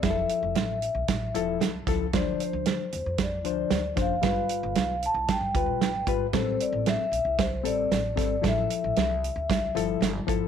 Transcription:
<<
  \new Staff \with { instrumentName = "Vibraphone" } { \time 4/4 \key f \lydian \tempo 4 = 114 e''2. r4 | d''8 c''4. d''4. f''8~ | f''4. a''8 g''4. r8 | c''8 d''8 e''4 c''8 d''4. |
e''2. r4 | }
  \new Staff \with { instrumentName = "Reed electric piano" } { \time 4/4 \key f \lydian <f e' aes' a'>4. r4 <f e' a'>8 r8 <f e' a'>8 | <f d' c''>4. r4 <f d' c''>8 r8 <f d' c''>8 | <g f' b'>4. r4 <g f' b'>8 r8 <g f' b'>8 | <g c' a'>4. r4 <g c' a'>8 r8 <g c' a'>8 |
<f e' a'>4. r4 <f e' a'>8 r8 <f e' a'>8 | }
  \new Staff \with { instrumentName = "Upright bass" } { \clef bass \time 4/4 \key f \lydian f,,8 r16 f,,16 a,,8. b,,16 a,,8 e,,8 c,8 des,8 | d,8 r16 d,8 r16 e,16 f,8. d,8 d,8 fis,,8 | g,,8 r16 g,,16 b,,8. c,16 r16 g,16 d,16 b,,8 g,,16 aes,,8 | a,,8 r16 a,,8 r16 b,,16 c,8. a,,8 a,,8 aes,,8 |
a,,8 r16 a,,16 c,8. d,16 c,8 g,,8 g,,8 aes,,8 | }
  \new DrumStaff \with { instrumentName = "Drums" } \drummode { \time 4/4 <hh bd sn>8 hh8 <hh sn>8 hh8 <hh bd sn>8 hh8 <hh sn>8 <hh bd sn>8 | <hh bd sn>8 hh8 <hh sn>8 hh8 <hh bd sn>8 hh8 <hh sn>8 <hh bd sn>8 | <hh bd sn>8 hh8 <hh sn>8 hh8 <hh bd sn>8 <hh bd>8 <hh sn>8 <hh bd>8 | <hh bd sn>8 hh8 <hh sn>8 hh8 <hh bd sn>8 hh8 <hh sn>8 <hh bd sn>8 |
<hh bd sn>8 hh8 <hh sn>8 hh8 <hh bd sn>8 hh8 <hh sn>8 <hh bd>8 | }
>>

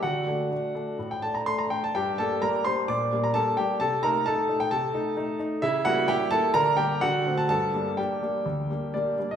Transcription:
<<
  \new Staff \with { instrumentName = "Grand piano" } { \time 4/4 \key g \minor \tempo 4 = 128 << { fis''2~ fis''16 g''16 a''16 bes''16 c'''16 bes''16 g''16 a''16 | g''8 a''8 bes''8 c'''8 d'''8. bes''16 a''8 g''8 | a''8 bes''8 a''8. g''16 a''4. r8 | e''8 fis''8 g''8 a''8 bes''8 g''8 fis''8. a''16 |
a''4 g''2 d''8. ees''16 | } \\ { fis'2~ fis'16 r4. r16 | g'8 a'8 bes'8 c''8 d''8. r16 a'8 g'8 | a'8 bes'8 a'8. r16 a'4. r8 | e'8 fis'8 g'8 a'8 bes'8 g'8 fis'8. r16 |
a'4 g'2~ g'8 r8 | } >> }
  \new Staff \with { instrumentName = "Grand piano" } { \time 4/4 \key g \minor d8 <a d'>8 <a d'>8 <a d'>8 a,8 <a d'>8 <a d'>8 <a d'>8 | g,8 <g bes d'>8 <g bes d'>8 <g bes d'>8 bes,8 <g bes d'>8 <g bes d'>8 <g bes d'>8 | c8 <a ees'>8 <a ees'>8 <a ees'>8 c8 <a ees'>8 <a ees'>8 <a ees'>8 | cis8 <g ais e'>8 <g ais e'>8 <g ais e'>8 d8 <g bes d'>8 d8 <a c' d'>8 |
g,8 <g bes d'>8 <g bes d'>8 <g bes d'>8 d,8 <g bes d'>8 <g bes d'>8 <g bes d'>8 | }
>>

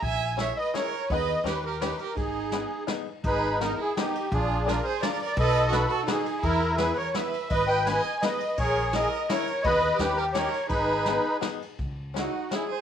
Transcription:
<<
  \new Staff \with { instrumentName = "Accordion" } { \time 3/4 \key gis \minor \tempo 4 = 169 << { gis''4 e''8 dis''8 cis''4 | dis''4 b'8 ais'8 b'8 ais'8 | gis'2 r4 | b'4 ais'8 gis'8 g'4 |
gis'4 ais'8 bis'8 \tuplet 3/2 { d''8 d''8 d''8 } | dis''4 b'8 a'8 gis'4 | ais'4 b'8 cis''8 e''4 | dis''8 g''8 gis''4 dis''4 |
cis''4 dis''4 cis''4 | dis''4 b'8 ais'8 cis''4 | b'2 r4 | \key cis \minor r4 fis'4 gis'8 bis'8 | } \\ { r2. | r2. | r2. | dis'4. r4. |
d'4. r4. | a'4. r4. | e'4. r4. | b'4. r4. |
gis'4. r4. | b'4 g'4. r8 | dis'2 r4 | r2. | } >> }
  \new Staff \with { instrumentName = "Violin" } { \time 3/4 \key gis \minor e''4 cis''8 b'8 ais'4 | b'4 g'8 g'8 g'8 g'8 | dis'2 r4 | gis'4 dis'8 e'8 dis'4 |
eis'4 eis'8 gis'8 \tuplet 3/2 { ais'8 ais'8 ais'8 } | b'4 fis'8 fis'8 dis'4 | e'4 gis'8 ais'8 b'4 | b'8 dis''8 dis''4 b'4 |
ais'4 ais'4 ais'4 | b'4 g'8 g'8 ais'4 | gis'2 r4 | \key cis \minor r4 dis'4 e'8 gis'8 | }
  \new Staff \with { instrumentName = "Five-string banjo" } { \time 3/4 \key gis \minor r4 <cis' e' gis' ais'>8 r8 <cis' e' gis' ais'>8 r8 | <b dis' gis' b'>4 <cis' dis' g' ais'>8 r8 <cis' dis' g' ais'>8 r8 | r4 <b dis' gis' b'>8 r8 <b dis' gis' b'>8 r8 | r4 <b dis' gis' ais'>8 r8 <b dis' gis' ais'>8 r8 |
r4 <d' eis' gis' ais'>8 r8 <d' eis' gis' ais'>8 r8 | r4 <dis' fis' a' b'>8 r8 <dis' fis' a' b'>8 r8 | r4 <b e' gis' b'>8 r8 <b e' gis' b'>8 r8 | r4 <b dis' gis' b'>8 r8 <b dis' gis' b'>8 r8 |
r4 <cis' e' gis' ais'>8 r8 <cis' e' gis' ais'>8 r8 | <b dis' gis' b'>4 <cis' dis' g' ais'>8 r8 <cis' dis' g' ais'>8 r8 | r4 <b dis' gis' b'>8 r8 <b dis' gis' b'>8 r8 | \key cis \minor r4 <cis' dis' e' gis'>8 r8 <cis' dis' e' gis'>8 r8 | }
  \new Staff \with { instrumentName = "Upright bass" } { \clef bass \time 3/4 \key gis \minor ais,,2 r4 | dis,4 dis,2 | gis,,2 r4 | gis,,2 r4 |
ais,,2 r4 | b,,2 r4 | e,2 r4 | gis,,2 r4 |
ais,,2 r4 | dis,4 dis,2 | gis,,2 r4 | \key cis \minor cis,2 r4 | }
  \new DrumStaff \with { instrumentName = "Drums" } \drummode { \time 3/4 <bd cymr>4 <cymr sn>4 <cymr sn>4 | <bd cymr>4 <cymr sn>4 <cymr sn>8 cymr8 | <bd cymr>4 <cymr sn>4 <cymr sn>4 | <bd cymr>4 <cymr sn>4 <cymr sn>8 cymr8 |
<bd cymr>4 <cymr sn>4 <cymr sn>8 cymr8 | <bd cymr>4 <cymr sn>4 <cymr sn>8 cymr8 | <bd cymr>4 <cymr sn>4 <cymr sn>8 cymr8 | <bd cymr>4 <cymr sn>4 <cymr sn>8 cymr8 |
<bd cymr>4 <cymr sn>4 <cymr sn>8 cymr8 | <bd cymr>4 <cymr sn>4 <cymr sn>8 cymr8 | <bd cymr>4 <cymr sn>4 <cymr sn>8 cymr8 | <hh bd>4 <hh sn>4 <hh sn>4 | }
>>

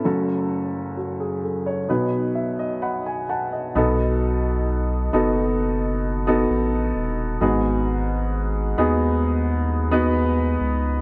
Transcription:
<<
  \new Staff \with { instrumentName = "Upright piano" } { \time 4/4 \key b \mixolydian \tempo 4 = 66 << { r4 fis'16 gis'16 a'16 cis''8 r16 e''16 dis''16 <fis'' b''>16 gis''16 <fis'' a''>16 dis''16~ | dis''16 r2. r8. | r1 | } \\ { <a cis' fis' a'>2 <b dis' fis' b'>4. r8 | <b dis' fis' a'>4. <b dis' fis' a'>4~ <b dis' fis' a'>16 <b dis' fis' a'>4~ <b dis' fis' a'>16 | <b dis' fis' gis'>4. <b dis' fis' gis'>4~ <b dis' fis' gis'>16 <b dis' fis' b'>4~ <b dis' fis' b'>16 | } >> }
  \new Staff \with { instrumentName = "Upright piano" } { \clef bass \time 4/4 \key b \mixolydian <fis,, fis,>2 <b,, b,>2 | b,4. r2 r8 | gis,4. r2 r8 | }
  \new Staff \with { instrumentName = "Sub bass" } { \clef bass \time 4/4 \key b \mixolydian r1 | b,,4. fis,,4. a,,8 dis,,8 | gis,,4. dis,2 cis,8 | }
>>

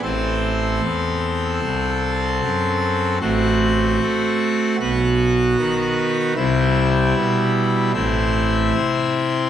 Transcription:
<<
  \new Staff \with { instrumentName = "Pipe organ" } { \time 4/4 \key a \dorian \tempo 4 = 76 <c' a'>1 | \key c \lydian <c' fis'>2 <b fis'>2 | <g e'>2 <c' e'>2 | }
  \new Staff \with { instrumentName = "Pipe organ" } { \clef bass \time 4/4 \key a \dorian <a,, a,>4 e,4 c,4 fis,4 | \key c \lydian <a,, a,>4 a4 <b,, b,>4 dis4 | <c, c>4 b,4 <a,, a,>4 c4 | }
>>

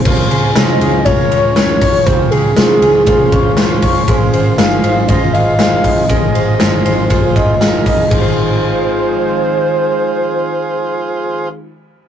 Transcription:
<<
  \new Staff \with { instrumentName = "Soft synth lead" } { \time 4/4 \key aes \major \tempo 4 = 119 r4 ees''4 des''4 des''4 | c''8 aes'2. r8 | r4 f''4 ees''8 f''8 f''4 | ees''2. r4 |
c''1~ | c''1 | }
  \new Staff \with { instrumentName = "Transistor combo organ" } { \time 4/4 \key aes \major <des' f' c''>4 <des' f' c''>4 <des' f' bes'>4 <des' f' des''>4 | <des' f' g'>4 <des' f' c''>4 <des' f' c''>4 <des' f' c''>4 | <f' aes' c''>4 <f' aes' ees''>4 <f' aes' c''>4 <f' aes' c''>4 | <f' aes' ees''>4 <f' aes' c''>4 <f' aes' c''>4 <f' aes' bes'>4 |
<f' aes' c''>1~ | <f' aes' c''>1 | }
  \new Staff \with { instrumentName = "Clean electric guitar" } { \time 4/4 \key aes \major des8 aes'8 f'8 aes'8 f'8 des''8 f'8 des''8 | des8 aes'8 f'8 aes'8 f'8 des''8 f'8 des''8 | aes8 c''8 f'8 c''8 f'8 ees''8 f'8 ees''8 | aes8 c''8 f'8 c''8 f'8 ees''8 f'8 ees''8 |
<aes ees' f' c''>1~ | <aes ees' f' c''>1 | }
  \new Staff \with { instrumentName = "Analog synth pad" } { \clef bass \time 4/4 \key aes \major << { <f aes des' f'>1~ | <f aes des' f'>1~ | <f aes des' f'>1~ | <f aes des' f'>1 |
<ees f aes c' f'>1~ | <ees f aes c' f'>1 | } \\ { des1~ | des1 | ees1~ | ees1 |
r1 | r1 | } >> }
  \new Staff \with { instrumentName = "Picked electric bass" } { \clef bass \time 4/4 \key aes \major des,8 des,8 c,8 des,8 c,8 des,4 r8 | des,8 des,8 c,8 des,8 c,8 des,4 r8 | aes,,8 aes,,8 g,,8 aes,,8 g,,8 aes,,4 r8 | aes,,8 aes,,8 g,,8 aes,,8 g,,8 aes,,4 r8 |
aes,,1~ | aes,,1 | }
  \new DrumStaff \with { instrumentName = "Drums" } \drummode { \time 4/4 <cymc bd>8 cymr8 <cymr sn>8 cymr8 <bd cymr>8 cymr8 <cymr sn>8 <hho bd cymr>8 | <hhp bd cymr>8 cymr8 <cymr sn>8 cymr8 <bd cymr>8 <bd cymr>8 <cymr sn>8 <hho bd cymr>8 | <hhp bd cymr>8 cymr8 <cymr sn>8 cymr8 <bd cymr>8 cymr8 <cymr sn>8 <hho bd cymr>8 | <hhp bd cymr>8 cymr8 <cymr sn>8 cymr8 <bd cymr>8 <bd cymr>8 <cymr sn>8 <hho bd cymr>8 |
<cymc bd>4 r4 r4 r4 | r4 r4 r4 r4 | }
>>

